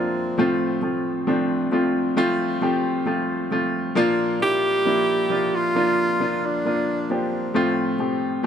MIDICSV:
0, 0, Header, 1, 3, 480
1, 0, Start_track
1, 0, Tempo, 895522
1, 206, Time_signature, 4, 2, 24, 8
1, 4537, End_track
2, 0, Start_track
2, 0, Title_t, "Tenor saxophone"
2, 0, Program_c, 0, 66
2, 0, Note_on_c, 0, 60, 89
2, 452, Note_off_c, 0, 60, 0
2, 2370, Note_on_c, 0, 67, 127
2, 2978, Note_on_c, 0, 65, 111
2, 2986, Note_off_c, 0, 67, 0
2, 3460, Note_on_c, 0, 62, 92
2, 3468, Note_off_c, 0, 65, 0
2, 3817, Note_on_c, 0, 60, 87
2, 3825, Note_off_c, 0, 62, 0
2, 4291, Note_off_c, 0, 60, 0
2, 4537, End_track
3, 0, Start_track
3, 0, Title_t, "Grand piano"
3, 0, Program_c, 1, 0
3, 0, Control_c, 1, 64, 127
3, 0, Note_on_c, 1, 46, 68
3, 0, Note_on_c, 1, 53, 67
3, 0, Note_on_c, 1, 58, 58
3, 0, Note_on_c, 1, 62, 55
3, 0, Note_on_c, 1, 65, 78
3, 0, Note_on_c, 1, 76, 99
3, 183, Note_off_c, 1, 46, 0
3, 193, Note_off_c, 1, 53, 0
3, 195, Note_off_c, 1, 58, 0
3, 196, Note_off_c, 1, 62, 0
3, 197, Note_off_c, 1, 65, 0
3, 202, Note_on_c, 1, 53, 99
3, 206, Note_on_c, 1, 57, 89
3, 207, Note_on_c, 1, 45, 59
3, 208, Note_on_c, 1, 60, 84
3, 211, Note_on_c, 1, 65, 105
3, 213, Control_c, 1, 64, 0
3, 216, Note_off_c, 1, 76, 0
3, 300, Control_c, 1, 64, 127
3, 430, Note_off_c, 1, 53, 0
3, 434, Note_off_c, 1, 57, 0
3, 435, Note_off_c, 1, 60, 0
3, 436, Note_off_c, 1, 65, 0
3, 438, Note_on_c, 1, 53, 65
3, 442, Note_on_c, 1, 57, 63
3, 444, Note_on_c, 1, 60, 61
3, 447, Note_on_c, 1, 65, 69
3, 670, Note_off_c, 1, 53, 0
3, 672, Note_off_c, 1, 57, 0
3, 673, Note_off_c, 1, 60, 0
3, 675, Note_off_c, 1, 65, 0
3, 681, Note_on_c, 1, 53, 98
3, 681, Note_on_c, 1, 57, 79
3, 684, Note_on_c, 1, 60, 82
3, 687, Note_on_c, 1, 62, 94
3, 911, Note_off_c, 1, 53, 0
3, 912, Note_off_c, 1, 57, 0
3, 913, Note_off_c, 1, 60, 0
3, 915, Note_off_c, 1, 62, 0
3, 919, Note_on_c, 1, 53, 83
3, 921, Note_on_c, 1, 57, 76
3, 925, Note_on_c, 1, 60, 77
3, 926, Note_on_c, 1, 65, 89
3, 1150, Note_off_c, 1, 53, 0
3, 1152, Note_off_c, 1, 57, 0
3, 1153, Note_off_c, 1, 60, 0
3, 1154, Note_off_c, 1, 65, 0
3, 1161, Note_on_c, 1, 53, 107
3, 1164, Note_on_c, 1, 57, 99
3, 1164, Note_on_c, 1, 60, 102
3, 1167, Note_on_c, 1, 65, 127
3, 1391, Note_off_c, 1, 53, 0
3, 1393, Note_off_c, 1, 57, 0
3, 1393, Note_off_c, 1, 60, 0
3, 1394, Note_off_c, 1, 65, 0
3, 1401, Note_on_c, 1, 53, 91
3, 1404, Note_on_c, 1, 57, 81
3, 1406, Note_on_c, 1, 60, 81
3, 1410, Note_on_c, 1, 67, 99
3, 1629, Note_off_c, 1, 53, 0
3, 1633, Note_off_c, 1, 57, 0
3, 1634, Note_off_c, 1, 60, 0
3, 1636, Note_off_c, 1, 67, 0
3, 1637, Note_on_c, 1, 53, 80
3, 1643, Note_on_c, 1, 57, 78
3, 1643, Note_on_c, 1, 60, 80
3, 1645, Note_on_c, 1, 65, 90
3, 1870, Note_off_c, 1, 53, 0
3, 1872, Note_off_c, 1, 57, 0
3, 1873, Note_off_c, 1, 60, 0
3, 1874, Note_off_c, 1, 65, 0
3, 1881, Note_on_c, 1, 53, 79
3, 1885, Note_on_c, 1, 57, 78
3, 1885, Note_on_c, 1, 60, 69
3, 1887, Note_on_c, 1, 65, 99
3, 2105, Note_off_c, 1, 45, 0
3, 2111, Note_off_c, 1, 53, 0
3, 2113, Note_off_c, 1, 57, 0
3, 2113, Note_off_c, 1, 60, 0
3, 2115, Note_off_c, 1, 65, 0
3, 2119, Note_on_c, 1, 53, 114
3, 2123, Note_on_c, 1, 58, 104
3, 2123, Note_on_c, 1, 62, 101
3, 2124, Note_on_c, 1, 46, 77
3, 2128, Note_on_c, 1, 65, 126
3, 2133, Control_c, 1, 64, 0
3, 2237, Control_c, 1, 64, 127
3, 2351, Note_off_c, 1, 53, 0
3, 2352, Note_off_c, 1, 58, 0
3, 2352, Note_off_c, 1, 62, 0
3, 2355, Note_off_c, 1, 65, 0
3, 2361, Note_on_c, 1, 53, 64
3, 2364, Note_on_c, 1, 58, 61
3, 2367, Note_on_c, 1, 62, 63
3, 2370, Note_on_c, 1, 64, 76
3, 2591, Note_off_c, 1, 53, 0
3, 2593, Note_off_c, 1, 58, 0
3, 2595, Note_off_c, 1, 62, 0
3, 2596, Note_off_c, 1, 64, 0
3, 2601, Note_on_c, 1, 53, 80
3, 2603, Note_on_c, 1, 58, 72
3, 2606, Note_on_c, 1, 62, 72
3, 2609, Note_on_c, 1, 64, 86
3, 2832, Note_off_c, 1, 53, 0
3, 2833, Note_off_c, 1, 58, 0
3, 2834, Note_off_c, 1, 62, 0
3, 2835, Note_off_c, 1, 64, 0
3, 2841, Note_on_c, 1, 53, 79
3, 2844, Note_on_c, 1, 58, 66
3, 2847, Note_on_c, 1, 62, 66
3, 2848, Note_on_c, 1, 65, 83
3, 3071, Note_off_c, 1, 53, 0
3, 3073, Note_off_c, 1, 58, 0
3, 3074, Note_off_c, 1, 62, 0
3, 3075, Note_off_c, 1, 65, 0
3, 3081, Note_on_c, 1, 53, 83
3, 3085, Note_on_c, 1, 58, 82
3, 3086, Note_on_c, 1, 62, 84
3, 3089, Note_on_c, 1, 65, 99
3, 3312, Note_off_c, 1, 53, 0
3, 3313, Note_off_c, 1, 58, 0
3, 3314, Note_off_c, 1, 62, 0
3, 3315, Note_off_c, 1, 65, 0
3, 3323, Note_on_c, 1, 53, 82
3, 3323, Note_on_c, 1, 58, 69
3, 3328, Note_on_c, 1, 62, 71
3, 3330, Note_on_c, 1, 65, 83
3, 3552, Note_off_c, 1, 53, 0
3, 3553, Note_off_c, 1, 58, 0
3, 3555, Note_off_c, 1, 62, 0
3, 3556, Note_off_c, 1, 65, 0
3, 3567, Note_on_c, 1, 53, 65
3, 3568, Note_on_c, 1, 58, 72
3, 3570, Note_on_c, 1, 62, 67
3, 3575, Note_on_c, 1, 65, 74
3, 3794, Note_off_c, 1, 53, 0
3, 3795, Note_off_c, 1, 58, 0
3, 3796, Note_off_c, 1, 62, 0
3, 3798, Note_off_c, 1, 65, 0
3, 3805, Note_on_c, 1, 53, 76
3, 3807, Note_on_c, 1, 58, 63
3, 3810, Note_on_c, 1, 62, 65
3, 3814, Note_on_c, 1, 67, 77
3, 4024, Note_off_c, 1, 46, 0
3, 4033, Note_off_c, 1, 53, 0
3, 4035, Note_off_c, 1, 58, 0
3, 4036, Note_off_c, 1, 62, 0
3, 4038, Note_off_c, 1, 67, 0
3, 4043, Note_on_c, 1, 53, 98
3, 4046, Note_on_c, 1, 57, 91
3, 4047, Note_on_c, 1, 45, 65
3, 4048, Note_on_c, 1, 60, 90
3, 4051, Control_c, 1, 64, 0
3, 4051, Note_on_c, 1, 65, 110
3, 4158, Control_c, 1, 64, 127
3, 4272, Note_off_c, 1, 53, 0
3, 4274, Note_off_c, 1, 57, 0
3, 4275, Note_off_c, 1, 60, 0
3, 4277, Note_off_c, 1, 65, 0
3, 4281, Note_on_c, 1, 53, 67
3, 4284, Note_on_c, 1, 57, 60
3, 4286, Note_on_c, 1, 60, 60
3, 4290, Note_on_c, 1, 67, 78
3, 4512, Note_off_c, 1, 53, 0
3, 4513, Note_off_c, 1, 57, 0
3, 4514, Note_off_c, 1, 60, 0
3, 4516, Note_off_c, 1, 67, 0
3, 4520, Note_on_c, 1, 53, 84
3, 4537, Note_off_c, 1, 45, 0
3, 4537, Note_off_c, 1, 53, 0
3, 4537, End_track
0, 0, End_of_file